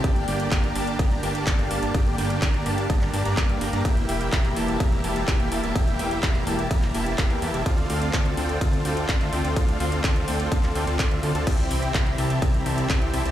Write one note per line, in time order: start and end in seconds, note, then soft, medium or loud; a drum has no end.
0.00 7.62 G3 medium
0.00 3.81 G4 medium
0.04 0.25 G1 loud
0.04 3.81 D3 medium
0.04 0.25 A#3 loud
0.04 7.62 A#3 medium
0.04 0.25 D4 medium
0.04 0.25 G4 medium
0.04 0.25 D5 medium
0.04 0.25 G5 loud
0.04 kick loud
0.04 closed hi-hat medium
0.04 ride medium
0.16 closed hi-hat soft
0.28 0.49 G1 loud
0.28 0.49 A#3 medium
0.28 0.49 D4 medium
0.28 0.49 G4 medium
0.28 0.49 D5 medium
0.28 0.49 G5 loud
0.28 open hi-hat loud
0.40 closed hi-hat medium
0.52 0.73 G1 loud
0.52 0.73 A#3 loud
0.52 0.73 D4 medium
0.52 0.73 G4 medium
0.52 0.73 D5 medium
0.52 0.73 A#5 loud
0.52 kick loud
0.52 clap loud
0.52 closed hi-hat medium
0.52 ride medium
0.64 closed hi-hat soft
0.75 0.97 G1 medium
0.75 0.96 A#3 medium
0.75 0.96 D4 medium
0.75 0.96 G4 medium
0.75 0.96 D5 medium
0.75 0.96 A5 loud
0.75 open hi-hat loud
0.87 closed hi-hat medium
0.99 1.21 G1 medium
0.99 1.20 A#3 medium
0.99 1.20 D4 medium
0.99 1.20 G4 medium
0.99 1.20 D5 medium
0.99 1.20 A#5 medium
0.99 kick loud
0.99 closed hi-hat medium
0.99 ride medium
1.11 closed hi-hat soft
1.23 1.44 G1 loud
1.23 1.44 A#3 medium
1.23 1.44 D4 medium
1.23 1.44 G4 medium
1.23 1.44 D5 medium
1.23 1.44 A5 loud
1.23 open hi-hat loud
1.35 closed hi-hat medium
1.47 1.56 G1 medium
1.47 1.57 A#3 medium
1.47 1.57 D4 medium
1.47 1.57 G4 medium
1.47 1.57 D5 medium
1.47 1.57 A5 medium
1.47 kick loud
1.47 clap loud
1.47 closed hi-hat medium
1.47 ride medium
1.59 1.68 G1 medium
1.59 1.68 A#3 loud
1.59 1.68 D4 medium
1.59 1.68 G4 medium
1.59 1.68 D5 medium
1.59 1.68 F5 loud
1.59 closed hi-hat soft
1.71 1.80 G1 loud
1.71 1.80 A#3 loud
1.71 1.80 D4 medium
1.71 1.80 G4 medium
1.71 1.80 D5 medium
1.71 1.80 A5 loud
1.71 open hi-hat loud
1.83 1.92 G1 loud
1.83 1.92 A#3 medium
1.83 1.92 D4 medium
1.83 1.92 G4 medium
1.83 1.92 D5 medium
1.83 1.92 A5 medium
1.83 closed hi-hat medium
1.94 2.16 G1 medium
1.94 2.15 A#3 medium
1.94 2.15 D4 medium
1.94 2.15 G4 medium
1.94 2.15 D5 medium
1.94 2.15 G5 loud
1.94 kick loud
1.94 closed hi-hat medium
1.94 ride medium
2.06 closed hi-hat soft
2.18 2.40 G1 loud
2.18 2.39 A#3 medium
2.18 2.39 D4 medium
2.18 2.39 G4 medium
2.18 2.39 D5 medium
2.18 2.39 G5 loud
2.18 open hi-hat loud
2.30 closed hi-hat soft
2.42 2.64 G1 loud
2.42 2.63 A#3 loud
2.42 2.63 D4 loud
2.42 2.63 G4 loud
2.42 2.63 D5 medium
2.42 2.63 A#5 loud
2.42 kick loud
2.42 clap loud
2.42 closed hi-hat medium
2.42 ride medium
2.54 closed hi-hat soft
2.66 2.87 G1 loud
2.66 2.87 A#3 medium
2.66 2.87 D4 medium
2.66 2.87 G4 medium
2.66 2.87 D5 medium
2.66 2.87 A5 loud
2.66 open hi-hat loud
2.78 closed hi-hat soft
2.90 3.11 G1 medium
2.90 3.11 A#3 medium
2.90 3.11 D4 medium
2.90 3.11 G4 medium
2.90 3.11 D5 medium
2.90 3.11 A#5 medium
2.90 kick loud
2.90 closed hi-hat medium
2.90 ride medium
3.01 clap soft
3.01 closed hi-hat soft
3.14 3.23 G1 loud
3.14 3.23 A#3 medium
3.14 3.23 D4 medium
3.14 3.23 G4 medium
3.14 3.23 D5 medium
3.14 3.23 A5 loud
3.14 open hi-hat loud
3.25 3.35 G1 loud
3.25 3.36 A#3 medium
3.25 3.36 D4 medium
3.25 3.36 G4 medium
3.25 3.36 D5 medium
3.25 3.36 A#5 loud
3.25 closed hi-hat medium
3.37 3.59 G2 loud
3.37 3.58 A#3 medium
3.37 3.58 D4 medium
3.37 3.58 G4 medium
3.37 3.58 D5 medium
3.37 3.58 F5 medium
3.37 kick loud
3.37 clap loud
3.37 closed hi-hat medium
3.37 ride medium
3.49 closed hi-hat soft
3.61 3.71 G1 loud
3.61 3.70 A#3 medium
3.61 3.70 D4 medium
3.61 3.70 G4 medium
3.61 3.70 D5 medium
3.61 3.70 A#5 medium
3.61 open hi-hat loud
3.73 3.83 G2 loud
3.73 3.82 A#3 medium
3.73 3.82 D4 medium
3.73 3.82 G4 medium
3.73 3.82 D5 medium
3.73 3.82 A#5 loud
3.73 closed hi-hat medium
3.85 4.06 E1 medium
3.85 7.62 E3 medium
3.85 4.06 A#3 medium
3.85 4.06 E4 medium
3.85 7.62 G4 medium
3.85 4.06 G4 medium
3.85 4.06 E5 medium
3.85 4.06 G5 loud
3.85 kick loud
3.85 closed hi-hat medium
3.85 ride medium
3.97 closed hi-hat soft
4.09 4.30 E1 loud
4.09 4.30 A#3 medium
4.09 4.30 E4 medium
4.09 4.30 G4 medium
4.09 4.30 E5 medium
4.09 4.30 G5 loud
4.09 open hi-hat loud
4.21 closed hi-hat medium
4.33 4.54 E1 loud
4.33 4.54 A#3 loud
4.33 4.54 E4 loud
4.33 4.54 G4 medium
4.33 4.54 E5 loud
4.33 4.54 A#5 loud
4.33 kick loud
4.33 clap loud
4.33 closed hi-hat medium
4.33 ride medium
4.45 closed hi-hat soft
4.56 4.78 E1 loud
4.56 4.77 A#3 medium
4.56 4.77 E4 medium
4.56 4.77 G4 medium
4.56 4.77 E5 medium
4.56 4.77 A5 loud
4.56 open hi-hat loud
4.68 closed hi-hat medium
4.80 5.02 E1 loud
4.80 5.01 A#3 medium
4.80 5.01 E4 medium
4.80 5.01 G4 medium
4.80 5.01 E5 medium
4.80 5.01 A#5 medium
4.80 kick loud
4.80 closed hi-hat medium
4.80 ride medium
4.92 closed hi-hat soft
5.04 5.25 E1 loud
5.04 5.25 A#3 loud
5.04 5.25 E4 medium
5.04 5.25 G4 medium
5.04 5.25 E5 medium
5.04 5.25 A5 loud
5.04 open hi-hat loud
5.16 closed hi-hat medium
5.28 5.37 E1 medium
5.28 5.38 A#3 medium
5.28 5.38 E4 medium
5.28 5.38 G4 medium
5.28 5.38 E5 medium
5.28 5.38 A5 medium
5.28 kick loud
5.28 clap loud
5.28 closed hi-hat medium
5.28 ride medium
5.40 5.49 E1 loud
5.40 5.49 A#3 loud
5.40 5.49 E4 medium
5.40 5.49 G4 medium
5.40 5.49 E5 medium
5.40 5.49 G5 loud
5.40 closed hi-hat soft
5.52 5.61 E1 loud
5.52 5.61 A#3 loud
5.52 5.61 E4 medium
5.52 5.61 G4 medium
5.52 5.61 E5 medium
5.52 5.61 A5 loud
5.52 open hi-hat loud
5.64 5.73 E1 loud
5.64 5.73 A#3 medium
5.64 5.73 E4 medium
5.64 5.73 G4 medium
5.64 5.73 E5 medium
5.64 5.73 A5 medium
5.64 closed hi-hat medium
5.75 5.97 E1 medium
5.75 5.96 A#3 loud
5.75 5.96 E4 medium
5.75 5.96 G4 medium
5.75 5.96 E5 medium
5.75 5.96 G5 loud
5.75 kick loud
5.75 closed hi-hat medium
5.75 ride medium
5.87 closed hi-hat soft
5.99 6.21 E1 loud
5.99 6.20 A#3 medium
5.99 6.20 E4 medium
5.99 6.20 G4 medium
5.99 6.20 E5 medium
5.99 6.20 G5 loud
5.99 open hi-hat loud
6.11 closed hi-hat medium
6.23 6.45 E1 medium
6.23 6.44 A#3 loud
6.23 6.44 E4 loud
6.23 6.44 G4 medium
6.23 6.44 E5 medium
6.23 6.44 A#5 loud
6.23 kick loud
6.23 clap loud
6.23 closed hi-hat medium
6.23 ride medium
6.35 closed hi-hat soft
6.47 6.68 E1 loud
6.47 6.68 A#3 loud
6.47 6.68 E4 medium
6.47 6.68 G4 medium
6.47 6.68 E5 medium
6.47 6.68 A5 loud
6.47 open hi-hat loud
6.59 closed hi-hat medium
6.71 6.92 E1 loud
6.71 6.92 A#3 medium
6.71 6.92 E4 medium
6.71 6.92 G4 medium
6.71 6.92 E5 medium
6.71 6.92 A#5 medium
6.71 kick loud
6.71 closed hi-hat medium
6.71 ride medium
6.82 clap soft
6.82 closed hi-hat soft
6.95 7.16 E1 loud
6.95 7.15 A#3 medium
6.95 7.16 E4 medium
6.95 7.16 G4 medium
6.95 7.16 E5 medium
6.95 7.15 A5 loud
6.95 open hi-hat loud
7.06 closed hi-hat medium
7.18 7.28 E1 medium
7.18 7.28 A#3 medium
7.18 7.28 E4 medium
7.18 7.28 G4 medium
7.18 7.28 E5 medium
7.18 7.28 A5 loud
7.18 kick loud
7.18 clap loud
7.18 closed hi-hat medium
7.18 ride medium
7.30 7.40 E2 medium
7.30 7.39 A#3 loud
7.30 7.39 E4 medium
7.30 7.39 G4 medium
7.30 7.39 E5 medium
7.30 7.39 G5 loud
7.30 closed hi-hat soft
7.42 7.52 E2 loud
7.42 7.51 A#3 medium
7.42 7.51 E4 medium
7.42 7.51 G4 medium
7.42 7.51 E5 medium
7.42 7.51 A5 loud
7.42 open hi-hat loud
7.54 7.64 E1 loud
7.54 7.63 A#3 medium
7.54 7.63 E4 medium
7.54 7.63 G4 medium
7.54 7.63 E5 medium
7.54 7.63 A5 medium
7.54 closed hi-hat medium
7.66 7.87 D2 medium
7.66 11.43 D3 medium
7.66 11.43 A3 medium
7.66 13.31 C4 medium
7.66 7.87 C4 medium
7.66 11.43 F4 medium
7.66 7.87 F4 medium
7.66 7.87 A4 medium
7.66 7.87 D5 medium
7.66 7.87 F5 loud
7.66 kick loud
7.66 closed hi-hat medium
7.66 ride medium
7.78 closed hi-hat soft
7.90 8.11 D2 loud
7.90 8.11 C4 loud
7.90 8.11 F4 medium
7.90 8.11 A4 medium
7.90 8.11 D5 medium
7.90 8.11 F5 loud
7.90 open hi-hat loud
8.02 closed hi-hat medium
8.13 8.35 D2 loud
8.13 8.35 C4 loud
8.13 8.35 F4 loud
8.13 8.35 A4 medium
8.13 8.35 D5 medium
8.13 8.35 A5 loud
8.13 kick loud
8.13 clap loud
8.13 closed hi-hat medium
8.13 ride medium
8.26 closed hi-hat soft
8.37 8.59 D2 medium
8.37 8.58 C4 medium
8.37 8.58 F4 medium
8.37 8.58 A4 medium
8.37 8.58 D5 medium
8.37 8.58 G5 loud
8.37 open hi-hat loud
8.49 closed hi-hat medium
8.61 8.83 D2 loud
8.61 8.82 C4 medium
8.61 8.82 F4 medium
8.61 8.82 A4 medium
8.61 8.82 D5 medium
8.61 8.82 A5 medium
8.61 kick loud
8.61 closed hi-hat medium
8.61 ride medium
8.73 closed hi-hat soft
8.85 9.06 D2 loud
8.85 9.06 C4 medium
8.85 9.06 F4 medium
8.85 9.06 A4 medium
8.85 9.06 D5 medium
8.85 9.06 G5 loud
8.85 open hi-hat loud
8.97 closed hi-hat medium
9.09 9.18 D2 loud
9.09 9.19 C4 medium
9.09 9.19 F4 medium
9.09 9.19 A4 medium
9.09 9.19 D5 medium
9.09 9.19 G5 loud
9.09 kick loud
9.09 clap loud
9.09 closed hi-hat medium
9.09 ride medium
9.21 9.30 D2 medium
9.21 9.30 C4 loud
9.21 9.30 F4 medium
9.21 9.30 A4 medium
9.21 9.30 D5 medium
9.21 9.30 E5 loud
9.21 closed hi-hat soft
9.33 9.42 D2 loud
9.33 9.42 C4 loud
9.33 9.42 F4 medium
9.33 9.42 A4 medium
9.33 9.42 D5 medium
9.33 9.42 G5 loud
9.33 open hi-hat loud
9.44 9.54 D2 loud
9.44 9.54 C4 medium
9.44 9.54 F4 medium
9.44 9.54 A4 medium
9.44 9.54 D5 medium
9.44 9.54 G5 medium
9.44 closed hi-hat medium
9.56 9.78 D2 medium
9.56 9.77 C4 medium
9.56 9.77 F4 medium
9.56 9.77 A4 medium
9.56 9.77 D5 medium
9.56 9.77 F5 loud
9.56 kick loud
9.56 closed hi-hat medium
9.56 ride medium
9.68 closed hi-hat soft
9.80 10.02 D2 loud
9.80 10.01 C4 medium
9.80 10.01 F4 medium
9.80 10.01 A4 medium
9.80 10.01 D5 medium
9.80 10.01 F5 loud
9.80 open hi-hat loud
9.92 closed hi-hat medium
10.04 10.26 D2 loud
10.04 10.25 C4 loud
10.04 10.25 F4 medium
10.04 10.25 A4 loud
10.04 10.25 D5 medium
10.04 10.25 A5 loud
10.04 kick loud
10.04 clap loud
10.04 closed hi-hat medium
10.04 ride medium
10.16 closed hi-hat soft
10.28 10.49 D2 medium
10.28 10.49 C4 medium
10.28 10.49 F4 medium
10.28 10.49 A4 medium
10.28 10.49 D5 medium
10.28 10.49 G5 loud
10.28 open hi-hat loud
10.40 closed hi-hat medium
10.52 10.73 D2 loud
10.52 10.73 C4 medium
10.52 10.73 F4 medium
10.52 10.73 A4 medium
10.52 10.73 D5 medium
10.52 10.73 A5 medium
10.52 kick loud
10.52 closed hi-hat medium
10.52 ride medium
10.63 clap soft
10.63 closed hi-hat soft
10.75 10.85 D2 loud
10.75 10.85 C4 medium
10.75 10.85 F4 medium
10.75 10.85 A4 medium
10.75 10.85 D5 medium
10.75 10.85 G5 loud
10.75 open hi-hat loud
10.87 10.97 D2 loud
10.87 10.98 C4 medium
10.87 10.98 F4 medium
10.87 10.98 A4 medium
10.87 10.98 D5 medium
10.87 10.98 A5 loud
10.87 closed hi-hat medium
10.99 11.21 D2 medium
10.99 11.20 C4 medium
10.99 11.20 F4 medium
10.99 11.20 A4 medium
10.99 11.20 D5 medium
10.99 11.20 E5 medium
10.99 kick loud
10.99 clap loud
10.99 closed hi-hat medium
10.99 ride medium
11.11 closed hi-hat soft
11.23 11.33 D2 loud
11.23 11.32 C4 medium
11.23 11.32 F4 medium
11.23 11.32 A4 medium
11.23 11.32 D5 medium
11.23 11.32 A5 medium
11.23 open hi-hat loud
11.35 11.45 D2 loud
11.35 11.44 C4 medium
11.35 11.44 F4 medium
11.35 11.44 A4 medium
11.35 11.44 D5 medium
11.35 11.44 A5 loud
11.35 closed hi-hat medium
11.47 11.68 C2 medium
11.47 13.31 E3 medium
11.47 13.31 G3 medium
11.47 11.68 C4 medium
11.47 11.68 E4 medium
11.47 13.31 G4 medium
11.47 11.68 G4 medium
11.47 11.68 E5 medium
11.47 11.68 G5 loud
11.47 kick loud
11.47 closed hi-hat medium
11.47 crash medium
11.47 ride medium
11.59 closed hi-hat soft
11.71 11.92 C2 loud
11.71 11.92 C4 medium
11.71 11.92 E4 medium
11.71 11.92 G4 medium
11.71 11.92 E5 medium
11.71 11.92 G5 loud
11.71 open hi-hat loud
11.83 closed hi-hat medium
11.94 12.16 C2 loud
11.94 12.16 C4 loud
11.94 12.16 E4 loud
11.94 12.16 G4 medium
11.94 12.16 E5 medium
11.94 12.16 A#5 loud
11.94 kick loud
11.94 clap loud
11.94 closed hi-hat medium
11.94 ride medium
12.06 closed hi-hat soft
12.18 12.40 C2 medium
12.18 12.39 C4 medium
12.18 12.39 E4 medium
12.18 12.39 G4 medium
12.18 12.39 E5 medium
12.18 12.39 A5 loud
12.18 open hi-hat loud
12.30 closed hi-hat medium
12.42 12.64 C2 loud
12.42 12.63 C4 medium
12.42 12.63 E4 medium
12.42 12.63 G4 medium
12.42 12.63 E5 medium
12.42 12.63 A#5 medium
12.42 kick loud
12.42 closed hi-hat medium
12.42 ride medium
12.54 closed hi-hat soft
12.66 12.87 C2 loud
12.66 12.87 C4 medium
12.66 12.87 E4 medium
12.66 12.87 G4 medium
12.66 12.87 E5 medium
12.66 12.87 A5 loud
12.66 open hi-hat loud
12.78 closed hi-hat medium
12.90 12.99 C2 loud
12.90 13.00 C4 medium
12.90 13.00 E4 medium
12.90 13.00 G4 medium
12.90 13.00 E5 medium
12.90 13.00 A5 loud
12.90 kick loud
12.90 clap loud
12.90 closed hi-hat medium
12.90 ride medium
13.02 13.11 C2 medium
13.02 13.11 C4 loud
13.02 13.11 E4 medium
13.02 13.11 G4 medium
13.02 13.11 E5 medium
13.02 13.11 G5 loud
13.02 closed hi-hat soft
13.13 13.23 C2 loud
13.13 13.23 C4 loud
13.13 13.23 E4 medium
13.13 13.23 G4 medium
13.13 13.23 E5 medium
13.13 13.23 A5 loud
13.13 open hi-hat loud
13.25 13.31 C2 loud
13.25 13.31 C4 medium
13.25 13.31 E4 medium
13.25 13.31 G4 medium
13.25 13.31 E5 medium
13.25 13.31 A5 medium
13.25 closed hi-hat medium